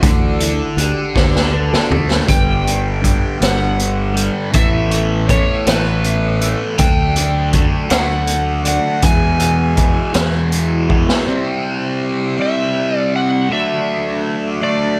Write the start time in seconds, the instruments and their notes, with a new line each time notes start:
Already playing: synth drone A1, tonewheel organ F#4
0.02 fingered electric bass D2, distorted electric guitar D3, tonewheel organ E3 A3 D4, kick, closed hi-hat
0.39 tonewheel organ E4, distorted electric guitar A4, closed hi-hat
0.77 fingered electric bass D2, distorted electric guitar D4, tonewheel organ G4, closed hi-hat
1.15 fingered electric bass D2, distorted electric guitar A4, kick, snare
1.36 snare
1.52 distorted electric guitar D4, tonewheel organ B4
1.71 tonewheel organ A4, snare
1.90 fingered electric bass D2, distorted electric guitar A3, floor tom
2.11 snare
2.26 fingered electric bass G1, distorted electric guitar G2 D3 G3, tonewheel organ B3 D4 G4 B4, electric slide guitar G5, kick, closed hi-hat
2.64 distorted electric guitar D3 G3, closed hi-hat
3.02 distorted electric guitar G2 D3 G3, kick, closed hi-hat
3.39 fingered electric bass G1, distorted electric guitar G2 D3 G3, snare, closed hi-hat
3.44 electric slide guitar F#5
3.79 closed hi-hat
4.14 distorted electric guitar D3 G3, closed hi-hat
4.52 fingered electric bass A1, distorted electric guitar A2 E3 A3, tonewheel organ E4 A4, electric slide guitar E5, kick, closed hi-hat
4.91 distorted electric guitar E3 A3, closed hi-hat
5.27 distorted electric guitar A2 E3 A3, electric slide guitar C#5, kick, closed hi-hat
5.66 fingered electric bass A1, distorted electric guitar A2 E3 A3, electric slide guitar B4, snare, closed hi-hat
6.04 closed hi-hat
6.41 distorted electric guitar E3 A3, closed hi-hat
6.78 fingered electric bass D2, distorted electric guitar D3 A3 D4, tonewheel organ F#3 A3 D4, electric slide guitar G5, kick, closed hi-hat
7.16 distorted electric guitar A3 D4, closed hi-hat
7.53 distorted electric guitar D3 A3 D4, kick, closed hi-hat
7.89 fingered electric bass D2, distorted electric guitar D3 A3 D4, electric slide guitar F#5, snare, closed hi-hat
8.27 closed hi-hat
8.64 distorted electric guitar A3 D4, electric slide guitar F#5, closed hi-hat
9.01 distorted electric guitar E2 B2 E3, fingered electric bass E2, tonewheel organ G#3 E4, electric slide guitar G#5, kick, closed hi-hat
9.05 tonewheel organ B3 G#4
9.39 distorted electric guitar B2 E3, closed hi-hat
9.76 distorted electric guitar E2 B2 E3, kick, closed hi-hat
10.13 fingered electric bass E2, distorted electric guitar E2 B2 E3, snare, closed hi-hat
10.52 closed hi-hat
10.89 distorted electric guitar B2 E3, kick
11.09 snare
11.26 distorted electric guitar C3 G3 C4, tonewheel organ G3 C4 E4 G4
12.37 distorted electric guitar C3 G3 C4
12.42 electric slide guitar E5
12.98 electric slide guitar D5
13.16 electric slide guitar F#5
13.49 distorted electric guitar D3 A3 D4, tonewheel organ F#3 A3 D4 F#4, electric slide guitar E5
14.61 distorted electric guitar D3 A3 D4, electric slide guitar D5